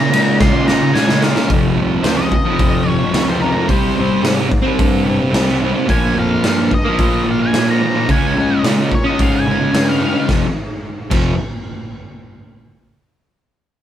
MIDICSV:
0, 0, Header, 1, 6, 480
1, 0, Start_track
1, 0, Key_signature, -4, "minor"
1, 0, Tempo, 549451
1, 1300, Time_signature, 4, 2, 24, 8
1, 12078, End_track
2, 0, Start_track
2, 0, Title_t, "Lead electric guitar"
2, 0, Program_c, 0, 29
2, 0, Note_on_c, 0, 82, 114
2, 321, Note_off_c, 0, 82, 0
2, 356, Note_on_c, 0, 84, 89
2, 582, Note_off_c, 0, 84, 0
2, 594, Note_on_c, 0, 82, 87
2, 820, Note_off_c, 0, 82, 0
2, 825, Note_on_c, 0, 80, 89
2, 1055, Note_off_c, 0, 80, 0
2, 1082, Note_on_c, 0, 77, 83
2, 1303, Note_off_c, 0, 77, 0
2, 1778, Note_on_c, 0, 72, 86
2, 1891, Note_off_c, 0, 72, 0
2, 1895, Note_on_c, 0, 75, 99
2, 2524, Note_off_c, 0, 75, 0
2, 2524, Note_on_c, 0, 73, 99
2, 2824, Note_off_c, 0, 73, 0
2, 2872, Note_on_c, 0, 72, 74
2, 2974, Note_on_c, 0, 70, 81
2, 2979, Note_off_c, 0, 72, 0
2, 3206, Note_off_c, 0, 70, 0
2, 3219, Note_on_c, 0, 72, 95
2, 3681, Note_off_c, 0, 72, 0
2, 5155, Note_on_c, 0, 80, 101
2, 5377, Note_off_c, 0, 80, 0
2, 5407, Note_on_c, 0, 77, 88
2, 5857, Note_off_c, 0, 77, 0
2, 5890, Note_on_c, 0, 75, 80
2, 6338, Note_off_c, 0, 75, 0
2, 6387, Note_on_c, 0, 77, 88
2, 6478, Note_off_c, 0, 77, 0
2, 6488, Note_on_c, 0, 80, 101
2, 6705, Note_off_c, 0, 80, 0
2, 6730, Note_on_c, 0, 82, 84
2, 7063, Note_off_c, 0, 82, 0
2, 7086, Note_on_c, 0, 80, 92
2, 7538, Note_off_c, 0, 80, 0
2, 7814, Note_on_c, 0, 73, 100
2, 7910, Note_off_c, 0, 73, 0
2, 7914, Note_on_c, 0, 75, 90
2, 8053, Note_off_c, 0, 75, 0
2, 8053, Note_on_c, 0, 77, 82
2, 8152, Note_off_c, 0, 77, 0
2, 8173, Note_on_c, 0, 80, 94
2, 8623, Note_off_c, 0, 80, 0
2, 8638, Note_on_c, 0, 77, 82
2, 8746, Note_off_c, 0, 77, 0
2, 8758, Note_on_c, 0, 77, 89
2, 8983, Note_off_c, 0, 77, 0
2, 12078, End_track
3, 0, Start_track
3, 0, Title_t, "Distorted electric guitar"
3, 0, Program_c, 1, 30
3, 94, Note_on_c, 1, 49, 77
3, 115, Note_on_c, 1, 56, 78
3, 134, Note_on_c, 1, 61, 88
3, 442, Note_off_c, 1, 61, 0
3, 453, Note_on_c, 1, 61, 76
3, 482, Note_off_c, 1, 56, 0
3, 492, Note_on_c, 1, 56, 60
3, 559, Note_off_c, 1, 49, 0
3, 570, Note_on_c, 1, 49, 81
3, 585, Note_off_c, 1, 56, 0
3, 596, Note_on_c, 1, 56, 79
3, 600, Note_off_c, 1, 61, 0
3, 611, Note_on_c, 1, 61, 85
3, 696, Note_off_c, 1, 61, 0
3, 707, Note_off_c, 1, 56, 0
3, 798, Note_off_c, 1, 49, 0
3, 808, Note_on_c, 1, 49, 88
3, 831, Note_on_c, 1, 56, 102
3, 851, Note_on_c, 1, 61, 109
3, 924, Note_off_c, 1, 61, 0
3, 935, Note_on_c, 1, 61, 66
3, 965, Note_off_c, 1, 56, 0
3, 975, Note_on_c, 1, 56, 55
3, 1164, Note_off_c, 1, 61, 0
3, 1173, Note_off_c, 1, 49, 0
3, 1175, Note_on_c, 1, 61, 74
3, 1200, Note_off_c, 1, 56, 0
3, 1211, Note_on_c, 1, 56, 60
3, 1282, Note_off_c, 1, 61, 0
3, 1287, Note_on_c, 1, 41, 102
3, 1300, Note_off_c, 1, 56, 0
3, 1311, Note_on_c, 1, 48, 98
3, 1327, Note_on_c, 1, 53, 107
3, 1521, Note_off_c, 1, 41, 0
3, 1532, Note_on_c, 1, 41, 73
3, 1543, Note_off_c, 1, 48, 0
3, 1554, Note_on_c, 1, 48, 70
3, 1566, Note_off_c, 1, 53, 0
3, 1576, Note_on_c, 1, 53, 77
3, 1763, Note_off_c, 1, 41, 0
3, 1773, Note_on_c, 1, 41, 98
3, 1789, Note_off_c, 1, 48, 0
3, 1800, Note_on_c, 1, 48, 108
3, 1805, Note_off_c, 1, 53, 0
3, 1816, Note_on_c, 1, 53, 96
3, 1886, Note_off_c, 1, 53, 0
3, 1897, Note_on_c, 1, 53, 64
3, 1929, Note_off_c, 1, 48, 0
3, 1939, Note_on_c, 1, 48, 60
3, 2021, Note_off_c, 1, 41, 0
3, 2021, Note_off_c, 1, 48, 0
3, 2025, Note_off_c, 1, 53, 0
3, 2139, Note_on_c, 1, 53, 68
3, 2180, Note_on_c, 1, 48, 50
3, 2489, Note_on_c, 1, 41, 75
3, 2506, Note_off_c, 1, 48, 0
3, 2517, Note_on_c, 1, 48, 79
3, 2522, Note_off_c, 1, 53, 0
3, 2532, Note_on_c, 1, 53, 82
3, 2601, Note_off_c, 1, 53, 0
3, 2611, Note_on_c, 1, 53, 64
3, 2641, Note_off_c, 1, 48, 0
3, 2651, Note_on_c, 1, 48, 55
3, 2711, Note_off_c, 1, 41, 0
3, 2722, Note_on_c, 1, 41, 84
3, 2734, Note_off_c, 1, 48, 0
3, 2745, Note_on_c, 1, 48, 88
3, 2752, Note_off_c, 1, 53, 0
3, 2762, Note_on_c, 1, 53, 92
3, 2836, Note_off_c, 1, 53, 0
3, 2846, Note_on_c, 1, 53, 61
3, 2877, Note_off_c, 1, 48, 0
3, 2887, Note_on_c, 1, 48, 53
3, 2960, Note_off_c, 1, 41, 0
3, 2970, Note_on_c, 1, 41, 69
3, 2986, Note_off_c, 1, 48, 0
3, 2996, Note_on_c, 1, 48, 79
3, 3003, Note_off_c, 1, 53, 0
3, 3014, Note_on_c, 1, 53, 90
3, 3078, Note_off_c, 1, 53, 0
3, 3088, Note_on_c, 1, 53, 80
3, 3117, Note_off_c, 1, 48, 0
3, 3128, Note_on_c, 1, 48, 58
3, 3196, Note_off_c, 1, 53, 0
3, 3197, Note_off_c, 1, 41, 0
3, 3197, Note_off_c, 1, 48, 0
3, 3208, Note_on_c, 1, 48, 87
3, 3232, Note_on_c, 1, 55, 91
3, 3250, Note_on_c, 1, 60, 108
3, 3445, Note_off_c, 1, 48, 0
3, 3455, Note_on_c, 1, 48, 65
3, 3467, Note_off_c, 1, 55, 0
3, 3477, Note_on_c, 1, 55, 81
3, 3483, Note_off_c, 1, 60, 0
3, 3494, Note_on_c, 1, 60, 76
3, 3674, Note_off_c, 1, 48, 0
3, 3684, Note_on_c, 1, 48, 85
3, 3697, Note_off_c, 1, 55, 0
3, 3708, Note_on_c, 1, 55, 101
3, 3712, Note_off_c, 1, 60, 0
3, 3722, Note_on_c, 1, 60, 93
3, 3787, Note_off_c, 1, 60, 0
3, 3797, Note_on_c, 1, 60, 65
3, 3829, Note_off_c, 1, 55, 0
3, 3839, Note_on_c, 1, 55, 55
3, 3909, Note_off_c, 1, 48, 0
3, 3913, Note_off_c, 1, 55, 0
3, 3917, Note_off_c, 1, 60, 0
3, 4033, Note_on_c, 1, 60, 64
3, 4072, Note_on_c, 1, 55, 54
3, 4402, Note_on_c, 1, 48, 72
3, 4417, Note_off_c, 1, 55, 0
3, 4427, Note_on_c, 1, 55, 73
3, 4432, Note_off_c, 1, 60, 0
3, 4443, Note_on_c, 1, 60, 80
3, 4515, Note_off_c, 1, 60, 0
3, 4526, Note_on_c, 1, 60, 67
3, 4553, Note_off_c, 1, 55, 0
3, 4563, Note_on_c, 1, 55, 51
3, 4630, Note_off_c, 1, 48, 0
3, 4641, Note_on_c, 1, 48, 80
3, 4655, Note_off_c, 1, 55, 0
3, 4665, Note_on_c, 1, 55, 89
3, 4670, Note_off_c, 1, 60, 0
3, 4680, Note_on_c, 1, 60, 95
3, 4753, Note_off_c, 1, 60, 0
3, 4764, Note_on_c, 1, 60, 63
3, 4797, Note_off_c, 1, 55, 0
3, 4807, Note_on_c, 1, 55, 50
3, 4874, Note_off_c, 1, 48, 0
3, 4885, Note_on_c, 1, 48, 77
3, 4902, Note_off_c, 1, 55, 0
3, 4912, Note_on_c, 1, 55, 74
3, 4916, Note_off_c, 1, 60, 0
3, 4927, Note_on_c, 1, 60, 90
3, 4997, Note_off_c, 1, 60, 0
3, 5008, Note_on_c, 1, 60, 73
3, 5038, Note_off_c, 1, 55, 0
3, 5048, Note_on_c, 1, 55, 62
3, 5114, Note_off_c, 1, 48, 0
3, 5116, Note_off_c, 1, 60, 0
3, 5122, Note_on_c, 1, 46, 84
3, 5136, Note_off_c, 1, 55, 0
3, 5143, Note_on_c, 1, 53, 104
3, 5164, Note_on_c, 1, 58, 109
3, 5358, Note_off_c, 1, 46, 0
3, 5368, Note_on_c, 1, 46, 76
3, 5388, Note_off_c, 1, 53, 0
3, 5392, Note_on_c, 1, 53, 78
3, 5400, Note_off_c, 1, 58, 0
3, 5410, Note_on_c, 1, 58, 81
3, 5606, Note_off_c, 1, 46, 0
3, 5617, Note_on_c, 1, 46, 83
3, 5633, Note_off_c, 1, 53, 0
3, 5637, Note_on_c, 1, 53, 95
3, 5640, Note_off_c, 1, 58, 0
3, 5651, Note_on_c, 1, 58, 98
3, 5730, Note_off_c, 1, 58, 0
3, 5740, Note_on_c, 1, 58, 64
3, 5778, Note_off_c, 1, 53, 0
3, 5781, Note_on_c, 1, 53, 53
3, 5852, Note_off_c, 1, 46, 0
3, 5862, Note_off_c, 1, 58, 0
3, 5866, Note_off_c, 1, 53, 0
3, 5974, Note_on_c, 1, 58, 64
3, 6015, Note_on_c, 1, 53, 58
3, 6330, Note_on_c, 1, 46, 71
3, 6350, Note_off_c, 1, 53, 0
3, 6354, Note_on_c, 1, 53, 82
3, 6357, Note_off_c, 1, 58, 0
3, 6367, Note_on_c, 1, 58, 87
3, 6451, Note_off_c, 1, 58, 0
3, 6461, Note_on_c, 1, 58, 70
3, 6496, Note_off_c, 1, 53, 0
3, 6499, Note_on_c, 1, 53, 50
3, 6567, Note_off_c, 1, 46, 0
3, 6577, Note_on_c, 1, 46, 87
3, 6593, Note_off_c, 1, 53, 0
3, 6596, Note_on_c, 1, 53, 87
3, 6608, Note_off_c, 1, 58, 0
3, 6618, Note_on_c, 1, 58, 94
3, 6687, Note_off_c, 1, 58, 0
3, 6697, Note_on_c, 1, 58, 57
3, 6738, Note_off_c, 1, 53, 0
3, 6742, Note_on_c, 1, 53, 50
3, 6819, Note_off_c, 1, 46, 0
3, 6830, Note_on_c, 1, 46, 74
3, 6850, Note_off_c, 1, 53, 0
3, 6853, Note_on_c, 1, 53, 72
3, 6861, Note_off_c, 1, 58, 0
3, 6872, Note_on_c, 1, 58, 84
3, 6930, Note_off_c, 1, 58, 0
3, 6941, Note_on_c, 1, 58, 64
3, 6977, Note_off_c, 1, 53, 0
3, 6980, Note_on_c, 1, 53, 61
3, 7044, Note_off_c, 1, 58, 0
3, 7048, Note_off_c, 1, 46, 0
3, 7054, Note_on_c, 1, 49, 91
3, 7074, Note_off_c, 1, 53, 0
3, 7077, Note_on_c, 1, 56, 88
3, 7097, Note_on_c, 1, 61, 98
3, 7280, Note_off_c, 1, 49, 0
3, 7291, Note_on_c, 1, 49, 67
3, 7303, Note_off_c, 1, 56, 0
3, 7313, Note_on_c, 1, 56, 68
3, 7321, Note_off_c, 1, 61, 0
3, 7332, Note_on_c, 1, 61, 80
3, 7523, Note_off_c, 1, 49, 0
3, 7534, Note_on_c, 1, 49, 86
3, 7550, Note_off_c, 1, 56, 0
3, 7560, Note_on_c, 1, 56, 101
3, 7569, Note_off_c, 1, 61, 0
3, 7580, Note_on_c, 1, 61, 105
3, 7644, Note_off_c, 1, 61, 0
3, 7654, Note_on_c, 1, 61, 58
3, 7689, Note_off_c, 1, 56, 0
3, 7700, Note_on_c, 1, 56, 52
3, 7787, Note_off_c, 1, 49, 0
3, 7790, Note_off_c, 1, 56, 0
3, 7793, Note_off_c, 1, 61, 0
3, 7900, Note_on_c, 1, 61, 65
3, 7945, Note_on_c, 1, 56, 56
3, 8270, Note_on_c, 1, 49, 65
3, 8277, Note_off_c, 1, 56, 0
3, 8288, Note_on_c, 1, 56, 72
3, 8299, Note_off_c, 1, 61, 0
3, 8309, Note_on_c, 1, 61, 70
3, 8369, Note_off_c, 1, 61, 0
3, 8380, Note_on_c, 1, 61, 64
3, 8412, Note_off_c, 1, 56, 0
3, 8423, Note_on_c, 1, 56, 54
3, 8482, Note_off_c, 1, 49, 0
3, 8493, Note_on_c, 1, 49, 84
3, 8504, Note_off_c, 1, 56, 0
3, 8514, Note_on_c, 1, 56, 81
3, 8523, Note_off_c, 1, 61, 0
3, 8534, Note_on_c, 1, 61, 95
3, 8609, Note_off_c, 1, 61, 0
3, 8619, Note_on_c, 1, 61, 63
3, 8649, Note_off_c, 1, 56, 0
3, 8660, Note_on_c, 1, 56, 47
3, 8721, Note_off_c, 1, 49, 0
3, 8731, Note_on_c, 1, 49, 68
3, 8743, Note_off_c, 1, 56, 0
3, 8754, Note_on_c, 1, 56, 78
3, 8761, Note_off_c, 1, 61, 0
3, 8772, Note_on_c, 1, 61, 84
3, 8844, Note_off_c, 1, 61, 0
3, 8855, Note_on_c, 1, 61, 72
3, 8882, Note_off_c, 1, 56, 0
3, 8892, Note_on_c, 1, 56, 55
3, 8962, Note_off_c, 1, 49, 0
3, 8963, Note_off_c, 1, 61, 0
3, 8976, Note_on_c, 1, 41, 90
3, 8981, Note_off_c, 1, 56, 0
3, 8985, Note_on_c, 1, 48, 90
3, 8985, Note_on_c, 1, 53, 92
3, 9123, Note_off_c, 1, 41, 0
3, 9127, Note_off_c, 1, 48, 0
3, 9127, Note_off_c, 1, 53, 0
3, 9697, Note_on_c, 1, 41, 96
3, 9699, Note_on_c, 1, 48, 93
3, 9706, Note_on_c, 1, 53, 95
3, 9892, Note_off_c, 1, 41, 0
3, 9893, Note_off_c, 1, 48, 0
3, 9897, Note_off_c, 1, 53, 0
3, 12078, End_track
4, 0, Start_track
4, 0, Title_t, "Picked electric bass"
4, 0, Program_c, 2, 34
4, 0, Note_on_c, 2, 46, 101
4, 321, Note_off_c, 2, 46, 0
4, 353, Note_on_c, 2, 46, 91
4, 802, Note_off_c, 2, 46, 0
4, 832, Note_on_c, 2, 46, 88
4, 1280, Note_off_c, 2, 46, 0
4, 1315, Note_on_c, 2, 29, 96
4, 1482, Note_off_c, 2, 29, 0
4, 1543, Note_on_c, 2, 36, 88
4, 1714, Note_off_c, 2, 36, 0
4, 1781, Note_on_c, 2, 37, 98
4, 2125, Note_off_c, 2, 37, 0
4, 2266, Note_on_c, 2, 41, 92
4, 2608, Note_off_c, 2, 41, 0
4, 2737, Note_on_c, 2, 37, 87
4, 3082, Note_off_c, 2, 37, 0
4, 3222, Note_on_c, 2, 36, 91
4, 3565, Note_off_c, 2, 36, 0
4, 3691, Note_on_c, 2, 44, 90
4, 4038, Note_off_c, 2, 44, 0
4, 4185, Note_on_c, 2, 43, 92
4, 4527, Note_off_c, 2, 43, 0
4, 4658, Note_on_c, 2, 36, 89
4, 5003, Note_off_c, 2, 36, 0
4, 5149, Note_on_c, 2, 34, 88
4, 5317, Note_off_c, 2, 34, 0
4, 5382, Note_on_c, 2, 41, 79
4, 5553, Note_off_c, 2, 41, 0
4, 5624, Note_on_c, 2, 43, 93
4, 5968, Note_off_c, 2, 43, 0
4, 6106, Note_on_c, 2, 46, 88
4, 6449, Note_off_c, 2, 46, 0
4, 6583, Note_on_c, 2, 46, 84
4, 6928, Note_off_c, 2, 46, 0
4, 7065, Note_on_c, 2, 37, 84
4, 7409, Note_off_c, 2, 37, 0
4, 7541, Note_on_c, 2, 46, 91
4, 7887, Note_off_c, 2, 46, 0
4, 8033, Note_on_c, 2, 44, 89
4, 8375, Note_off_c, 2, 44, 0
4, 8506, Note_on_c, 2, 43, 80
4, 8852, Note_off_c, 2, 43, 0
4, 8987, Note_on_c, 2, 29, 83
4, 9118, Note_off_c, 2, 29, 0
4, 9710, Note_on_c, 2, 29, 82
4, 9930, Note_off_c, 2, 29, 0
4, 12078, End_track
5, 0, Start_track
5, 0, Title_t, "Muted distorted electric guitar strokes"
5, 706, Note_on_c, 9, 29, 47
5, 794, Note_off_c, 9, 29, 0
5, 2031, Note_on_c, 9, 29, 48
5, 2119, Note_off_c, 9, 29, 0
5, 3919, Note_on_c, 9, 29, 48
5, 4007, Note_off_c, 9, 29, 0
5, 5863, Note_on_c, 9, 29, 46
5, 5950, Note_off_c, 9, 29, 0
5, 7797, Note_on_c, 9, 29, 48
5, 7885, Note_off_c, 9, 29, 0
5, 12078, End_track
6, 0, Start_track
6, 0, Title_t, "Drums"
6, 118, Note_on_c, 9, 51, 82
6, 205, Note_off_c, 9, 51, 0
6, 353, Note_on_c, 9, 38, 71
6, 355, Note_on_c, 9, 36, 127
6, 440, Note_off_c, 9, 38, 0
6, 442, Note_off_c, 9, 36, 0
6, 593, Note_on_c, 9, 38, 81
6, 681, Note_off_c, 9, 38, 0
6, 834, Note_on_c, 9, 38, 92
6, 921, Note_off_c, 9, 38, 0
6, 950, Note_on_c, 9, 38, 90
6, 1037, Note_off_c, 9, 38, 0
6, 1070, Note_on_c, 9, 38, 118
6, 1157, Note_off_c, 9, 38, 0
6, 1187, Note_on_c, 9, 38, 93
6, 1275, Note_off_c, 9, 38, 0
6, 1310, Note_on_c, 9, 36, 112
6, 1311, Note_on_c, 9, 46, 54
6, 1398, Note_off_c, 9, 36, 0
6, 1398, Note_off_c, 9, 46, 0
6, 1784, Note_on_c, 9, 46, 54
6, 1785, Note_on_c, 9, 38, 100
6, 1871, Note_off_c, 9, 46, 0
6, 1872, Note_off_c, 9, 38, 0
6, 2025, Note_on_c, 9, 36, 79
6, 2112, Note_off_c, 9, 36, 0
6, 2266, Note_on_c, 9, 36, 118
6, 2268, Note_on_c, 9, 46, 53
6, 2353, Note_off_c, 9, 36, 0
6, 2355, Note_off_c, 9, 46, 0
6, 2745, Note_on_c, 9, 46, 51
6, 2746, Note_on_c, 9, 38, 103
6, 2832, Note_off_c, 9, 46, 0
6, 2833, Note_off_c, 9, 38, 0
6, 3223, Note_on_c, 9, 46, 52
6, 3224, Note_on_c, 9, 36, 102
6, 3311, Note_off_c, 9, 46, 0
6, 3312, Note_off_c, 9, 36, 0
6, 3710, Note_on_c, 9, 38, 110
6, 3710, Note_on_c, 9, 46, 57
6, 3797, Note_off_c, 9, 46, 0
6, 3798, Note_off_c, 9, 38, 0
6, 3945, Note_on_c, 9, 36, 78
6, 4032, Note_off_c, 9, 36, 0
6, 4186, Note_on_c, 9, 36, 108
6, 4188, Note_on_c, 9, 46, 60
6, 4273, Note_off_c, 9, 36, 0
6, 4276, Note_off_c, 9, 46, 0
6, 4668, Note_on_c, 9, 46, 52
6, 4669, Note_on_c, 9, 38, 100
6, 4755, Note_off_c, 9, 46, 0
6, 4756, Note_off_c, 9, 38, 0
6, 4789, Note_on_c, 9, 38, 31
6, 4877, Note_off_c, 9, 38, 0
6, 5145, Note_on_c, 9, 36, 105
6, 5149, Note_on_c, 9, 46, 54
6, 5233, Note_off_c, 9, 36, 0
6, 5236, Note_off_c, 9, 46, 0
6, 5624, Note_on_c, 9, 46, 48
6, 5625, Note_on_c, 9, 38, 105
6, 5712, Note_off_c, 9, 46, 0
6, 5713, Note_off_c, 9, 38, 0
6, 5865, Note_on_c, 9, 36, 77
6, 5953, Note_off_c, 9, 36, 0
6, 6104, Note_on_c, 9, 46, 51
6, 6105, Note_on_c, 9, 36, 105
6, 6191, Note_off_c, 9, 46, 0
6, 6192, Note_off_c, 9, 36, 0
6, 6586, Note_on_c, 9, 46, 47
6, 6587, Note_on_c, 9, 38, 107
6, 6673, Note_off_c, 9, 46, 0
6, 6674, Note_off_c, 9, 38, 0
6, 7066, Note_on_c, 9, 46, 49
6, 7068, Note_on_c, 9, 36, 100
6, 7153, Note_off_c, 9, 46, 0
6, 7155, Note_off_c, 9, 36, 0
6, 7551, Note_on_c, 9, 46, 54
6, 7552, Note_on_c, 9, 38, 102
6, 7639, Note_off_c, 9, 46, 0
6, 7640, Note_off_c, 9, 38, 0
6, 7788, Note_on_c, 9, 36, 76
6, 7876, Note_off_c, 9, 36, 0
6, 8031, Note_on_c, 9, 36, 107
6, 8032, Note_on_c, 9, 46, 54
6, 8118, Note_off_c, 9, 36, 0
6, 8120, Note_off_c, 9, 46, 0
6, 8513, Note_on_c, 9, 46, 55
6, 8514, Note_on_c, 9, 38, 106
6, 8600, Note_off_c, 9, 46, 0
6, 8601, Note_off_c, 9, 38, 0
6, 8630, Note_on_c, 9, 38, 28
6, 8717, Note_off_c, 9, 38, 0
6, 8988, Note_on_c, 9, 36, 99
6, 8989, Note_on_c, 9, 38, 81
6, 9076, Note_off_c, 9, 36, 0
6, 9076, Note_off_c, 9, 38, 0
6, 9706, Note_on_c, 9, 49, 83
6, 9710, Note_on_c, 9, 36, 106
6, 9794, Note_off_c, 9, 49, 0
6, 9797, Note_off_c, 9, 36, 0
6, 12078, End_track
0, 0, End_of_file